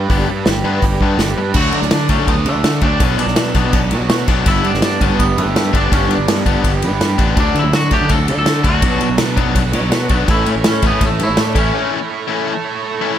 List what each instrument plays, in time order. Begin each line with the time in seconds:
Already playing: distorted electric guitar D4 G4 B4, tonewheel organ B4 D5 G5 D6
0.10 fingered electric bass G1, distorted electric guitar D3 G3 B3 D4, kick, open hi-hat
0.28 fingered electric bass G2, muted distorted electric guitar stroke
0.46 fingered electric bass G1, distorted electric guitar G4, muted distorted electric guitar stroke, snare, open hi-hat
0.64 fingered electric bass G2, distorted electric guitar D3 G3 B3 D4 B4
0.82 fingered electric bass G1, distorted electric guitar G4, muted distorted electric guitar stroke, kick, open hi-hat
1.00 fingered electric bass G2, distorted electric guitar D3 G3 B3 D4, kick
1.18 fingered electric bass G1, distorted electric guitar G4, muted distorted electric guitar stroke, snare, open hi-hat
1.36 fingered electric bass G2, distorted electric guitar B4, muted distorted electric guitar stroke
1.54 fingered electric bass D2, distorted electric guitar D3 F#3 A3 D4, clean electric guitar F#4, kick, crash
1.72 fingered electric bass D3, distorted electric guitar F#3, clean electric guitar D4, ride
1.82 fingered electric bass D2, snare
1.91 fingered electric bass D3, distorted electric guitar D4, clean electric guitar D4, snare, ride
2.09 fingered electric bass D2, distorted electric guitar D3 F#3 A3 D4, clean electric guitar C#4, kick, ride
2.19 fingered electric bass D3
2.27 fingered electric bass D2, clean electric guitar B3, distorted electric guitar F#4, kick, ride
2.45 fingered electric bass D3, clean electric guitar A3, distorted electric guitar D5, ride
2.55 fingered electric bass D2
2.64 fingered electric bass D3, distorted electric guitar F#4, snare, ride
2.81 fingered electric bass D2, distorted electric guitar D3 F#3 A3 D4, clean electric guitar D4, kick, ride
3.00 fingered electric bass B1, distorted electric guitar B2 F#3 B3 D4, clean electric guitar C#4, kick, ride
3.17 fingered electric bass B2, distorted electric guitar F#3, clean electric guitar D4, ride
3.27 fingered electric bass B1, snare
3.36 fingered electric bass B2, distorted electric guitar D4, snare, ride
3.54 fingered electric bass B1, distorted electric guitar B2 F#3 B3 D4, kick, ride
3.64 fingered electric bass B2
3.73 fingered electric bass B1, distorted electric guitar F#4, kick, ride
3.91 fingered electric bass B2, distorted electric guitar C#5, ride
4.01 fingered electric bass B1
4.09 fingered electric bass B2, distorted electric guitar F#4, snare, ride
4.28 fingered electric bass B1, distorted electric guitar B2 F#3 B3 D4, kick, ride
4.46 fingered electric bass G1, distorted electric guitar D3 G3 B3 D4, clean electric guitar E4, kick, ride
4.64 fingered electric bass G2, distorted electric guitar B3, clean electric guitar D4, ride
4.73 fingered electric bass G1, snare
4.81 fingered electric bass G2, distorted electric guitar D4, clean electric guitar D4, snare, ride
5.00 fingered electric bass G1, distorted electric guitar D3 G3 B3 D4, clean electric guitar C#4, kick, ride
5.10 fingered electric bass G2
5.19 fingered electric bass G1, clean electric guitar B3, distorted electric guitar G4, kick, ride
5.36 fingered electric bass G2, clean electric guitar A3, distorted electric guitar B4, ride
5.46 fingered electric bass G1
5.55 fingered electric bass G2, distorted electric guitar G4, snare, ride
5.73 fingered electric bass G1, distorted electric guitar D3 G3 B3 D4, clean electric guitar D4, kick, ride
5.91 fingered electric bass G1, distorted electric guitar D3 G3 B3 D4, clean electric guitar C#4, kick, ride
6.09 fingered electric bass G2, distorted electric guitar B3, clean electric guitar D4, ride
6.18 fingered electric bass G1
6.28 fingered electric bass G2, distorted electric guitar D4, snare, ride
6.45 fingered electric bass G1, distorted electric guitar D3 G3 B3 D4, kick, ride
6.55 fingered electric bass G2
6.64 fingered electric bass G1, distorted electric guitar G4, kick, ride
6.82 fingered electric bass G2, distorted electric guitar B4, ride
6.91 fingered electric bass G1
7.01 fingered electric bass G2, distorted electric guitar G4, snare, ride
7.18 fingered electric bass A1, distorted electric guitar D3 G3 B3 D4, kick, ride
7.36 fingered electric bass D2, distorted electric guitar D3 F#3 A3 D4, tonewheel organ D4 A4 F#5 D6, clean electric guitar D4, kick, ride
7.55 fingered electric bass D3, distorted electric guitar F#3, ride
7.59 clean electric guitar E4
7.64 fingered electric bass D2
7.73 fingered electric bass D3, distorted electric guitar D4, clean electric guitar F#4, snare, ride
7.91 fingered electric bass D2, distorted electric guitar D3 F#3 A3 D4, clean electric guitar G4, kick, ride
8.01 fingered electric bass D3
8.09 fingered electric bass D2, distorted electric guitar F#4, clean electric guitar A4, kick, ride
8.28 fingered electric bass D3, distorted electric guitar D5, ride
8.37 fingered electric bass D2, clean electric guitar A4
8.46 fingered electric bass D3, distorted electric guitar F#4, snare, ride
8.64 fingered electric bass D2, distorted electric guitar D3 F#3 A3 D4, clean electric guitar F#4, kick, ride
8.82 fingered electric bass B1, distorted electric guitar B2 F#3 B3 D4, tonewheel organ B4 C#6, kick, ride
9.01 fingered electric bass B2, distorted electric guitar F#3, ride
9.10 fingered electric bass B1
9.18 fingered electric bass B2, distorted electric guitar D4, snare, ride
9.36 fingered electric bass B1, distorted electric guitar B2 F#3 B3 D4, kick, ride
9.45 fingered electric bass B2
9.55 fingered electric bass B1, distorted electric guitar F#4, kick, ride
9.72 fingered electric bass B2, distorted electric guitar C#5, ride
9.81 fingered electric bass B1
9.90 fingered electric bass B2, distorted electric guitar F#4, snare, ride
10.09 fingered electric bass B1, distorted electric guitar B2 F#3 B3 D4, kick, ride
10.28 fingered electric bass A1, distorted electric guitar E3 A3 C#4 E4, clean electric guitar E4, tonewheel organ A4 C#5 E5, kick, ride
10.46 fingered electric bass A2, clean electric guitar C#4, distorted electric guitar E4, ride
10.56 fingered electric bass A1
10.64 fingered electric bass A2, clean electric guitar C#4, distorted electric guitar E4, snare, ride
10.82 fingered electric bass A1, distorted electric guitar E3 A3 C#4 E4, kick, ride
10.87 clean electric guitar B3
10.93 fingered electric bass A2
11.01 fingered electric bass A1, distorted electric guitar A4, kick, ride
11.06 clean electric guitar A3
11.19 fingered electric bass A2, distorted electric guitar C#5, ride
11.23 clean electric guitar E4
11.29 fingered electric bass A1
11.37 fingered electric bass A2, clean electric guitar D4, distorted electric guitar A4, snare, ride
11.55 fingered electric bass A1, distorted electric guitar E3 A3 C#4 E4, clean electric guitar C#4, kick, ride
11.74 distorted electric guitar E3 A3 C#4 E4
11.93 distorted electric guitar E4
12.10 distorted electric guitar E4
12.28 distorted electric guitar E3 A3 C#4 E4
12.46 distorted electric guitar A4
12.65 distorted electric guitar C#5
12.83 distorted electric guitar A4
13.01 distorted electric guitar E3 A3 C#4 E4